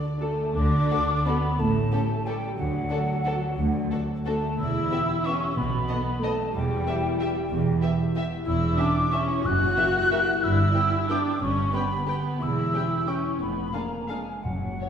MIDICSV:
0, 0, Header, 1, 10, 480
1, 0, Start_track
1, 0, Tempo, 356295
1, 758, Time_signature, 3, 2, 24, 8
1, 1696, Tempo, 333148
1, 6496, Tempo, 325203
1, 10336, Tempo, 316790
1, 12736, Tempo, 329308
1, 17056, Tempo, 332963
1, 19936, Tempo, 357995
1, 21485, End_track
2, 0, Start_track
2, 0, Title_t, "Flute"
2, 0, Program_c, 0, 73
2, 262, Note_on_c, 0, 81, 66
2, 721, Note_off_c, 0, 81, 0
2, 744, Note_on_c, 0, 86, 97
2, 1671, Note_off_c, 0, 86, 0
2, 1705, Note_on_c, 0, 83, 76
2, 2182, Note_on_c, 0, 81, 66
2, 2204, Note_off_c, 0, 83, 0
2, 3131, Note_on_c, 0, 79, 76
2, 3152, Note_off_c, 0, 81, 0
2, 3590, Note_off_c, 0, 79, 0
2, 3597, Note_on_c, 0, 78, 80
2, 5715, Note_off_c, 0, 78, 0
2, 6009, Note_on_c, 0, 81, 65
2, 6464, Note_off_c, 0, 81, 0
2, 6492, Note_on_c, 0, 88, 86
2, 7481, Note_on_c, 0, 85, 80
2, 7503, Note_off_c, 0, 88, 0
2, 7955, Note_on_c, 0, 83, 77
2, 7977, Note_off_c, 0, 85, 0
2, 8919, Note_on_c, 0, 81, 73
2, 8942, Note_off_c, 0, 83, 0
2, 9376, Note_off_c, 0, 81, 0
2, 9396, Note_on_c, 0, 79, 81
2, 11502, Note_off_c, 0, 79, 0
2, 12273, Note_on_c, 0, 88, 93
2, 12755, Note_on_c, 0, 86, 96
2, 12777, Note_off_c, 0, 88, 0
2, 13245, Note_on_c, 0, 85, 83
2, 13267, Note_off_c, 0, 86, 0
2, 13728, Note_on_c, 0, 90, 100
2, 13749, Note_off_c, 0, 85, 0
2, 15156, Note_on_c, 0, 88, 95
2, 15178, Note_off_c, 0, 90, 0
2, 16140, Note_on_c, 0, 86, 83
2, 16162, Note_off_c, 0, 88, 0
2, 16580, Note_off_c, 0, 86, 0
2, 16589, Note_on_c, 0, 85, 83
2, 17062, Note_on_c, 0, 83, 76
2, 17083, Note_off_c, 0, 85, 0
2, 17534, Note_off_c, 0, 83, 0
2, 17543, Note_on_c, 0, 83, 70
2, 18043, Note_on_c, 0, 88, 78
2, 18065, Note_off_c, 0, 83, 0
2, 18990, Note_on_c, 0, 85, 66
2, 19011, Note_off_c, 0, 88, 0
2, 19459, Note_off_c, 0, 85, 0
2, 19478, Note_on_c, 0, 83, 59
2, 19944, Note_on_c, 0, 82, 59
2, 19964, Note_off_c, 0, 83, 0
2, 20415, Note_on_c, 0, 80, 51
2, 20435, Note_off_c, 0, 82, 0
2, 20871, Note_on_c, 0, 78, 53
2, 20891, Note_off_c, 0, 80, 0
2, 21485, Note_off_c, 0, 78, 0
2, 21485, End_track
3, 0, Start_track
3, 0, Title_t, "Violin section"
3, 0, Program_c, 1, 48
3, 286, Note_on_c, 1, 69, 44
3, 394, Note_off_c, 1, 69, 0
3, 1234, Note_on_c, 1, 69, 48
3, 1341, Note_off_c, 1, 69, 0
3, 1711, Note_on_c, 1, 69, 54
3, 1827, Note_off_c, 1, 69, 0
3, 2658, Note_on_c, 1, 69, 51
3, 2773, Note_off_c, 1, 69, 0
3, 3160, Note_on_c, 1, 69, 56
3, 3276, Note_off_c, 1, 69, 0
3, 4088, Note_on_c, 1, 69, 48
3, 4204, Note_off_c, 1, 69, 0
3, 4577, Note_on_c, 1, 69, 59
3, 4692, Note_off_c, 1, 69, 0
3, 5514, Note_on_c, 1, 69, 49
3, 5629, Note_off_c, 1, 69, 0
3, 6020, Note_on_c, 1, 69, 62
3, 6136, Note_off_c, 1, 69, 0
3, 6972, Note_on_c, 1, 76, 53
3, 7091, Note_off_c, 1, 76, 0
3, 7466, Note_on_c, 1, 76, 59
3, 7584, Note_off_c, 1, 76, 0
3, 8427, Note_on_c, 1, 75, 49
3, 8545, Note_off_c, 1, 75, 0
3, 8922, Note_on_c, 1, 75, 62
3, 9040, Note_off_c, 1, 75, 0
3, 9857, Note_on_c, 1, 76, 49
3, 9976, Note_off_c, 1, 76, 0
3, 10356, Note_on_c, 1, 76, 58
3, 10477, Note_off_c, 1, 76, 0
3, 11289, Note_on_c, 1, 76, 53
3, 11411, Note_off_c, 1, 76, 0
3, 11814, Note_on_c, 1, 76, 65
3, 11935, Note_off_c, 1, 76, 0
3, 12735, Note_on_c, 1, 76, 54
3, 12851, Note_off_c, 1, 76, 0
3, 13233, Note_on_c, 1, 76, 56
3, 13349, Note_off_c, 1, 76, 0
3, 14181, Note_on_c, 1, 76, 52
3, 14298, Note_off_c, 1, 76, 0
3, 14690, Note_on_c, 1, 76, 61
3, 14807, Note_off_c, 1, 76, 0
3, 15634, Note_on_c, 1, 79, 48
3, 15750, Note_off_c, 1, 79, 0
3, 16132, Note_on_c, 1, 79, 59
3, 16248, Note_off_c, 1, 79, 0
3, 17077, Note_on_c, 1, 79, 51
3, 17192, Note_off_c, 1, 79, 0
3, 17555, Note_on_c, 1, 79, 55
3, 17670, Note_off_c, 1, 79, 0
3, 18510, Note_on_c, 1, 79, 42
3, 18626, Note_off_c, 1, 79, 0
3, 18975, Note_on_c, 1, 79, 45
3, 19090, Note_off_c, 1, 79, 0
3, 19930, Note_on_c, 1, 77, 35
3, 20037, Note_off_c, 1, 77, 0
3, 20398, Note_on_c, 1, 77, 41
3, 20505, Note_off_c, 1, 77, 0
3, 21379, Note_on_c, 1, 73, 31
3, 21485, Note_off_c, 1, 73, 0
3, 21485, End_track
4, 0, Start_track
4, 0, Title_t, "Cor anglais"
4, 0, Program_c, 2, 69
4, 0, Note_on_c, 2, 74, 73
4, 469, Note_off_c, 2, 74, 0
4, 21485, End_track
5, 0, Start_track
5, 0, Title_t, "Violin section"
5, 0, Program_c, 3, 48
5, 0, Note_on_c, 3, 74, 60
5, 514, Note_off_c, 3, 74, 0
5, 1217, Note_on_c, 3, 62, 49
5, 1228, Note_on_c, 3, 66, 52
5, 1325, Note_off_c, 3, 62, 0
5, 1335, Note_off_c, 3, 66, 0
5, 1704, Note_on_c, 3, 62, 50
5, 1714, Note_on_c, 3, 66, 46
5, 1819, Note_off_c, 3, 62, 0
5, 1829, Note_off_c, 3, 66, 0
5, 2656, Note_on_c, 3, 67, 52
5, 2663, Note_on_c, 3, 61, 51
5, 2771, Note_off_c, 3, 67, 0
5, 2778, Note_off_c, 3, 61, 0
5, 3146, Note_on_c, 3, 61, 48
5, 3149, Note_on_c, 3, 67, 50
5, 3262, Note_off_c, 3, 61, 0
5, 3265, Note_off_c, 3, 67, 0
5, 4067, Note_on_c, 3, 62, 47
5, 4072, Note_on_c, 3, 66, 48
5, 4183, Note_off_c, 3, 62, 0
5, 4187, Note_off_c, 3, 66, 0
5, 4554, Note_on_c, 3, 66, 50
5, 4559, Note_on_c, 3, 62, 50
5, 4670, Note_off_c, 3, 66, 0
5, 4674, Note_off_c, 3, 62, 0
5, 5524, Note_on_c, 3, 66, 45
5, 5530, Note_on_c, 3, 62, 45
5, 5640, Note_off_c, 3, 66, 0
5, 5645, Note_off_c, 3, 62, 0
5, 6018, Note_on_c, 3, 62, 48
5, 6022, Note_on_c, 3, 66, 44
5, 6133, Note_off_c, 3, 62, 0
5, 6137, Note_off_c, 3, 66, 0
5, 6980, Note_on_c, 3, 67, 51
5, 6984, Note_on_c, 3, 59, 51
5, 7098, Note_off_c, 3, 67, 0
5, 7102, Note_off_c, 3, 59, 0
5, 7493, Note_on_c, 3, 59, 49
5, 7503, Note_on_c, 3, 67, 46
5, 7611, Note_off_c, 3, 59, 0
5, 7621, Note_off_c, 3, 67, 0
5, 8416, Note_on_c, 3, 69, 55
5, 8419, Note_on_c, 3, 59, 52
5, 8535, Note_off_c, 3, 69, 0
5, 8537, Note_off_c, 3, 59, 0
5, 8930, Note_on_c, 3, 59, 48
5, 8933, Note_on_c, 3, 69, 50
5, 9048, Note_off_c, 3, 59, 0
5, 9051, Note_off_c, 3, 69, 0
5, 9868, Note_on_c, 3, 59, 50
5, 9870, Note_on_c, 3, 67, 54
5, 9986, Note_off_c, 3, 59, 0
5, 9988, Note_off_c, 3, 67, 0
5, 10355, Note_on_c, 3, 59, 49
5, 10358, Note_on_c, 3, 67, 53
5, 10476, Note_off_c, 3, 59, 0
5, 10479, Note_off_c, 3, 67, 0
5, 11296, Note_on_c, 3, 67, 56
5, 11302, Note_on_c, 3, 59, 49
5, 11417, Note_off_c, 3, 67, 0
5, 11423, Note_off_c, 3, 59, 0
5, 11787, Note_on_c, 3, 59, 56
5, 11788, Note_on_c, 3, 67, 57
5, 11908, Note_off_c, 3, 59, 0
5, 11909, Note_off_c, 3, 67, 0
5, 12754, Note_on_c, 3, 67, 57
5, 12761, Note_on_c, 3, 61, 52
5, 12871, Note_off_c, 3, 67, 0
5, 12878, Note_off_c, 3, 61, 0
5, 13244, Note_on_c, 3, 61, 48
5, 13249, Note_on_c, 3, 67, 55
5, 13361, Note_off_c, 3, 61, 0
5, 13366, Note_off_c, 3, 67, 0
5, 14183, Note_on_c, 3, 58, 52
5, 14191, Note_on_c, 3, 67, 54
5, 14300, Note_off_c, 3, 58, 0
5, 14308, Note_off_c, 3, 67, 0
5, 14684, Note_on_c, 3, 67, 56
5, 14697, Note_on_c, 3, 58, 48
5, 14800, Note_off_c, 3, 67, 0
5, 14813, Note_off_c, 3, 58, 0
5, 15604, Note_on_c, 3, 59, 52
5, 15614, Note_on_c, 3, 67, 46
5, 15721, Note_off_c, 3, 59, 0
5, 15731, Note_off_c, 3, 67, 0
5, 16111, Note_on_c, 3, 67, 52
5, 16112, Note_on_c, 3, 59, 51
5, 16227, Note_off_c, 3, 67, 0
5, 16229, Note_off_c, 3, 59, 0
5, 17038, Note_on_c, 3, 59, 44
5, 17038, Note_on_c, 3, 67, 52
5, 17153, Note_off_c, 3, 67, 0
5, 17154, Note_off_c, 3, 59, 0
5, 17523, Note_on_c, 3, 59, 44
5, 17526, Note_on_c, 3, 67, 47
5, 17638, Note_off_c, 3, 59, 0
5, 17642, Note_off_c, 3, 67, 0
5, 18488, Note_on_c, 3, 61, 44
5, 18500, Note_on_c, 3, 67, 42
5, 18603, Note_off_c, 3, 61, 0
5, 18615, Note_off_c, 3, 67, 0
5, 18974, Note_on_c, 3, 61, 37
5, 18975, Note_on_c, 3, 67, 36
5, 19090, Note_off_c, 3, 61, 0
5, 19090, Note_off_c, 3, 67, 0
5, 19935, Note_on_c, 3, 62, 36
5, 19941, Note_on_c, 3, 68, 38
5, 20043, Note_off_c, 3, 62, 0
5, 20049, Note_off_c, 3, 68, 0
5, 20413, Note_on_c, 3, 62, 33
5, 20414, Note_on_c, 3, 68, 32
5, 20521, Note_off_c, 3, 62, 0
5, 20521, Note_off_c, 3, 68, 0
5, 21381, Note_on_c, 3, 66, 46
5, 21485, Note_off_c, 3, 66, 0
5, 21485, End_track
6, 0, Start_track
6, 0, Title_t, "Harp"
6, 0, Program_c, 4, 46
6, 0, Note_on_c, 4, 50, 45
6, 0, Note_on_c, 4, 66, 36
6, 0, Note_on_c, 4, 69, 42
6, 20, Note_on_c, 4, 62, 38
6, 271, Note_on_c, 4, 61, 32
6, 503, Note_off_c, 4, 62, 0
6, 519, Note_on_c, 4, 62, 37
6, 692, Note_off_c, 4, 61, 0
6, 745, Note_off_c, 4, 50, 0
6, 761, Note_on_c, 4, 50, 56
6, 975, Note_off_c, 4, 62, 0
6, 991, Note_on_c, 4, 62, 47
6, 1213, Note_off_c, 4, 66, 0
6, 1229, Note_on_c, 4, 66, 49
6, 1441, Note_off_c, 4, 69, 0
6, 1458, Note_on_c, 4, 69, 52
6, 1672, Note_off_c, 4, 66, 0
6, 1688, Note_on_c, 4, 66, 46
6, 1919, Note_off_c, 4, 62, 0
6, 1936, Note_on_c, 4, 62, 53
6, 2167, Note_on_c, 4, 45, 55
6, 2187, Note_off_c, 4, 66, 0
6, 2189, Note_off_c, 4, 62, 0
6, 2193, Note_off_c, 4, 50, 0
6, 2399, Note_on_c, 4, 61, 42
6, 2653, Note_on_c, 4, 67, 49
6, 2879, Note_off_c, 4, 69, 0
6, 2897, Note_on_c, 4, 69, 51
6, 3128, Note_off_c, 4, 67, 0
6, 3146, Note_on_c, 4, 67, 49
6, 3359, Note_off_c, 4, 61, 0
6, 3376, Note_on_c, 4, 61, 49
6, 3603, Note_on_c, 4, 50, 57
6, 3606, Note_off_c, 4, 45, 0
6, 3615, Note_off_c, 4, 61, 0
6, 3616, Note_off_c, 4, 67, 0
6, 3834, Note_on_c, 4, 62, 46
6, 4084, Note_on_c, 4, 66, 46
6, 4317, Note_off_c, 4, 69, 0
6, 4334, Note_on_c, 4, 69, 49
6, 4563, Note_off_c, 4, 66, 0
6, 4580, Note_on_c, 4, 66, 46
6, 4794, Note_off_c, 4, 62, 0
6, 4812, Note_on_c, 4, 62, 45
6, 5020, Note_off_c, 4, 50, 0
6, 5038, Note_on_c, 4, 50, 55
6, 5259, Note_on_c, 4, 57, 42
6, 5487, Note_off_c, 4, 66, 0
6, 5504, Note_on_c, 4, 66, 51
6, 5736, Note_off_c, 4, 69, 0
6, 5754, Note_on_c, 4, 69, 46
6, 5983, Note_off_c, 4, 66, 0
6, 6000, Note_on_c, 4, 66, 46
6, 6232, Note_off_c, 4, 62, 0
6, 6249, Note_on_c, 4, 62, 50
6, 6492, Note_on_c, 4, 52, 55
6, 6511, Note_off_c, 4, 57, 0
6, 6513, Note_off_c, 4, 62, 0
6, 6513, Note_off_c, 4, 69, 0
6, 6514, Note_off_c, 4, 66, 0
6, 6515, Note_off_c, 4, 50, 0
6, 6728, Note_on_c, 4, 59, 43
6, 6979, Note_on_c, 4, 67, 46
6, 7226, Note_off_c, 4, 59, 0
6, 7244, Note_on_c, 4, 59, 50
6, 7470, Note_off_c, 4, 67, 0
6, 7488, Note_on_c, 4, 67, 46
6, 7700, Note_off_c, 4, 59, 0
6, 7718, Note_on_c, 4, 59, 50
6, 7950, Note_on_c, 4, 47, 51
6, 7954, Note_off_c, 4, 52, 0
6, 7963, Note_off_c, 4, 67, 0
6, 8167, Note_off_c, 4, 59, 0
6, 8185, Note_on_c, 4, 59, 47
6, 8423, Note_on_c, 4, 63, 51
6, 8666, Note_on_c, 4, 69, 47
6, 8898, Note_off_c, 4, 63, 0
6, 8916, Note_on_c, 4, 63, 51
6, 9133, Note_off_c, 4, 59, 0
6, 9151, Note_on_c, 4, 59, 50
6, 9377, Note_on_c, 4, 40, 54
6, 9390, Note_off_c, 4, 69, 0
6, 9392, Note_off_c, 4, 63, 0
6, 9393, Note_off_c, 4, 47, 0
6, 9606, Note_off_c, 4, 59, 0
6, 9624, Note_on_c, 4, 59, 48
6, 9866, Note_on_c, 4, 64, 50
6, 10102, Note_on_c, 4, 67, 53
6, 10332, Note_off_c, 4, 64, 0
6, 10350, Note_on_c, 4, 64, 49
6, 10571, Note_off_c, 4, 59, 0
6, 10589, Note_on_c, 4, 59, 49
6, 10805, Note_off_c, 4, 40, 0
6, 10823, Note_on_c, 4, 40, 62
6, 11061, Note_on_c, 4, 47, 49
6, 11287, Note_off_c, 4, 64, 0
6, 11305, Note_on_c, 4, 64, 50
6, 11552, Note_off_c, 4, 67, 0
6, 11570, Note_on_c, 4, 67, 53
6, 11790, Note_off_c, 4, 64, 0
6, 11808, Note_on_c, 4, 64, 47
6, 12037, Note_off_c, 4, 59, 0
6, 12055, Note_on_c, 4, 59, 57
6, 12262, Note_off_c, 4, 40, 0
6, 12280, Note_on_c, 4, 40, 53
6, 12285, Note_off_c, 4, 47, 0
6, 12289, Note_off_c, 4, 59, 0
6, 12503, Note_on_c, 4, 61, 47
6, 12730, Note_off_c, 4, 64, 0
6, 12747, Note_on_c, 4, 64, 48
6, 12976, Note_off_c, 4, 67, 0
6, 12993, Note_on_c, 4, 67, 55
6, 13227, Note_off_c, 4, 64, 0
6, 13245, Note_on_c, 4, 64, 55
6, 13463, Note_off_c, 4, 61, 0
6, 13480, Note_on_c, 4, 61, 51
6, 13740, Note_on_c, 4, 42, 61
6, 13741, Note_off_c, 4, 40, 0
6, 13966, Note_on_c, 4, 58, 44
6, 14192, Note_off_c, 4, 64, 0
6, 14209, Note_on_c, 4, 64, 54
6, 14451, Note_off_c, 4, 67, 0
6, 14469, Note_on_c, 4, 67, 51
6, 14686, Note_off_c, 4, 64, 0
6, 14703, Note_on_c, 4, 64, 54
6, 14923, Note_off_c, 4, 58, 0
6, 14941, Note_on_c, 4, 58, 51
6, 15169, Note_off_c, 4, 61, 0
6, 15170, Note_on_c, 4, 43, 56
6, 15177, Note_off_c, 4, 58, 0
6, 15179, Note_off_c, 4, 64, 0
6, 15180, Note_off_c, 4, 42, 0
6, 15891, Note_off_c, 4, 67, 0
6, 15908, Note_on_c, 4, 67, 47
6, 16137, Note_on_c, 4, 62, 48
6, 16361, Note_on_c, 4, 59, 50
6, 16570, Note_off_c, 4, 43, 0
6, 16587, Note_on_c, 4, 43, 60
6, 16822, Note_on_c, 4, 50, 46
6, 17041, Note_off_c, 4, 62, 0
6, 17059, Note_on_c, 4, 62, 49
6, 17294, Note_off_c, 4, 67, 0
6, 17311, Note_on_c, 4, 67, 46
6, 17528, Note_off_c, 4, 62, 0
6, 17545, Note_on_c, 4, 62, 45
6, 17775, Note_off_c, 4, 59, 0
6, 17792, Note_on_c, 4, 59, 48
6, 18021, Note_on_c, 4, 40, 52
6, 18050, Note_off_c, 4, 59, 0
6, 18050, Note_off_c, 4, 62, 0
6, 18053, Note_off_c, 4, 43, 0
6, 18054, Note_off_c, 4, 50, 0
6, 18256, Note_on_c, 4, 61, 38
6, 18499, Note_on_c, 4, 64, 38
6, 18734, Note_off_c, 4, 67, 0
6, 18751, Note_on_c, 4, 67, 45
6, 18983, Note_off_c, 4, 64, 0
6, 19001, Note_on_c, 4, 64, 39
6, 19221, Note_off_c, 4, 61, 0
6, 19238, Note_on_c, 4, 61, 41
6, 19467, Note_on_c, 4, 41, 42
6, 19476, Note_off_c, 4, 40, 0
6, 19480, Note_off_c, 4, 67, 0
6, 19482, Note_off_c, 4, 61, 0
6, 19482, Note_off_c, 4, 64, 0
6, 19699, Note_on_c, 4, 59, 35
6, 19942, Note_on_c, 4, 62, 38
6, 20182, Note_on_c, 4, 68, 35
6, 20406, Note_off_c, 4, 62, 0
6, 20422, Note_on_c, 4, 62, 30
6, 20644, Note_off_c, 4, 59, 0
6, 20660, Note_on_c, 4, 59, 33
6, 20888, Note_on_c, 4, 42, 36
6, 20894, Note_off_c, 4, 41, 0
6, 20898, Note_off_c, 4, 68, 0
6, 20901, Note_off_c, 4, 62, 0
6, 20902, Note_off_c, 4, 59, 0
6, 21117, Note_on_c, 4, 58, 30
6, 21383, Note_on_c, 4, 61, 30
6, 21485, Note_off_c, 4, 42, 0
6, 21485, Note_off_c, 4, 58, 0
6, 21485, Note_off_c, 4, 61, 0
6, 21485, End_track
7, 0, Start_track
7, 0, Title_t, "Viola section"
7, 0, Program_c, 5, 48
7, 253, Note_on_c, 5, 62, 43
7, 257, Note_on_c, 5, 66, 36
7, 258, Note_on_c, 5, 57, 63
7, 361, Note_off_c, 5, 62, 0
7, 365, Note_off_c, 5, 66, 0
7, 719, Note_off_c, 5, 57, 0
7, 755, Note_on_c, 5, 62, 79
7, 1695, Note_off_c, 5, 62, 0
7, 1706, Note_on_c, 5, 59, 75
7, 2170, Note_on_c, 5, 57, 62
7, 2178, Note_off_c, 5, 59, 0
7, 3132, Note_off_c, 5, 57, 0
7, 3139, Note_on_c, 5, 55, 63
7, 3594, Note_off_c, 5, 55, 0
7, 3602, Note_on_c, 5, 54, 63
7, 5718, Note_off_c, 5, 54, 0
7, 6015, Note_on_c, 5, 57, 70
7, 6468, Note_off_c, 5, 57, 0
7, 6493, Note_on_c, 5, 64, 74
7, 7452, Note_off_c, 5, 64, 0
7, 7471, Note_on_c, 5, 61, 78
7, 7936, Note_off_c, 5, 61, 0
7, 7941, Note_on_c, 5, 59, 70
7, 8887, Note_off_c, 5, 59, 0
7, 8909, Note_on_c, 5, 57, 64
7, 9362, Note_on_c, 5, 55, 70
7, 9371, Note_off_c, 5, 57, 0
7, 11484, Note_off_c, 5, 55, 0
7, 12259, Note_on_c, 5, 64, 74
7, 12705, Note_off_c, 5, 64, 0
7, 12751, Note_on_c, 5, 62, 70
7, 13233, Note_off_c, 5, 62, 0
7, 13242, Note_on_c, 5, 61, 74
7, 13709, Note_off_c, 5, 61, 0
7, 13718, Note_on_c, 5, 66, 88
7, 15151, Note_off_c, 5, 66, 0
7, 15158, Note_on_c, 5, 64, 82
7, 16104, Note_off_c, 5, 64, 0
7, 16125, Note_on_c, 5, 62, 71
7, 16581, Note_on_c, 5, 61, 69
7, 16583, Note_off_c, 5, 62, 0
7, 17046, Note_off_c, 5, 61, 0
7, 17069, Note_on_c, 5, 59, 59
7, 17540, Note_off_c, 5, 59, 0
7, 17557, Note_on_c, 5, 59, 60
7, 18027, Note_off_c, 5, 59, 0
7, 18037, Note_on_c, 5, 64, 66
7, 19000, Note_off_c, 5, 64, 0
7, 19001, Note_on_c, 5, 61, 55
7, 19465, Note_off_c, 5, 61, 0
7, 19471, Note_on_c, 5, 59, 55
7, 19940, Note_off_c, 5, 59, 0
7, 19943, Note_on_c, 5, 58, 46
7, 20399, Note_off_c, 5, 58, 0
7, 20420, Note_on_c, 5, 56, 41
7, 20881, Note_off_c, 5, 56, 0
7, 20899, Note_on_c, 5, 54, 43
7, 21485, Note_off_c, 5, 54, 0
7, 21485, End_track
8, 0, Start_track
8, 0, Title_t, "Timpani"
8, 0, Program_c, 6, 47
8, 7936, Note_on_c, 6, 47, 67
8, 8609, Note_off_c, 6, 47, 0
8, 13712, Note_on_c, 6, 42, 64
8, 14380, Note_off_c, 6, 42, 0
8, 20891, Note_on_c, 6, 42, 45
8, 21485, Note_off_c, 6, 42, 0
8, 21485, End_track
9, 0, Start_track
9, 0, Title_t, "Cello section"
9, 0, Program_c, 7, 48
9, 765, Note_on_c, 7, 50, 68
9, 1144, Note_off_c, 7, 50, 0
9, 2186, Note_on_c, 7, 45, 67
9, 2572, Note_off_c, 7, 45, 0
9, 3611, Note_on_c, 7, 38, 68
9, 3998, Note_off_c, 7, 38, 0
9, 5043, Note_on_c, 7, 38, 69
9, 5429, Note_off_c, 7, 38, 0
9, 6493, Note_on_c, 7, 40, 66
9, 6897, Note_off_c, 7, 40, 0
9, 7950, Note_on_c, 7, 47, 66
9, 8334, Note_off_c, 7, 47, 0
9, 9392, Note_on_c, 7, 40, 67
9, 9773, Note_off_c, 7, 40, 0
9, 10819, Note_on_c, 7, 40, 67
9, 11205, Note_off_c, 7, 40, 0
9, 12268, Note_on_c, 7, 40, 62
9, 12659, Note_off_c, 7, 40, 0
9, 13722, Note_on_c, 7, 42, 61
9, 14107, Note_off_c, 7, 42, 0
9, 15160, Note_on_c, 7, 43, 69
9, 15549, Note_off_c, 7, 43, 0
9, 16594, Note_on_c, 7, 43, 69
9, 16980, Note_off_c, 7, 43, 0
9, 18037, Note_on_c, 7, 40, 60
9, 18427, Note_off_c, 7, 40, 0
9, 19467, Note_on_c, 7, 41, 44
9, 19855, Note_off_c, 7, 41, 0
9, 20891, Note_on_c, 7, 42, 39
9, 21288, Note_off_c, 7, 42, 0
9, 21485, End_track
10, 0, Start_track
10, 0, Title_t, "Double bass section"
10, 0, Program_c, 8, 48
10, 752, Note_on_c, 8, 38, 75
10, 1137, Note_off_c, 8, 38, 0
10, 2174, Note_on_c, 8, 33, 72
10, 2566, Note_off_c, 8, 33, 0
10, 3595, Note_on_c, 8, 38, 70
10, 3990, Note_off_c, 8, 38, 0
10, 5030, Note_on_c, 8, 38, 68
10, 5423, Note_off_c, 8, 38, 0
10, 6489, Note_on_c, 8, 28, 69
10, 6895, Note_off_c, 8, 28, 0
10, 7936, Note_on_c, 8, 35, 74
10, 8327, Note_off_c, 8, 35, 0
10, 9381, Note_on_c, 8, 28, 67
10, 9767, Note_off_c, 8, 28, 0
10, 10811, Note_on_c, 8, 28, 74
10, 11201, Note_off_c, 8, 28, 0
10, 12258, Note_on_c, 8, 28, 69
10, 12654, Note_off_c, 8, 28, 0
10, 13712, Note_on_c, 8, 30, 66
10, 14102, Note_off_c, 8, 30, 0
10, 15146, Note_on_c, 8, 31, 67
10, 15542, Note_off_c, 8, 31, 0
10, 16581, Note_on_c, 8, 31, 68
10, 16973, Note_off_c, 8, 31, 0
10, 18024, Note_on_c, 8, 28, 61
10, 18420, Note_off_c, 8, 28, 0
10, 19461, Note_on_c, 8, 29, 53
10, 19852, Note_off_c, 8, 29, 0
10, 20878, Note_on_c, 8, 30, 47
10, 21281, Note_off_c, 8, 30, 0
10, 21485, End_track
0, 0, End_of_file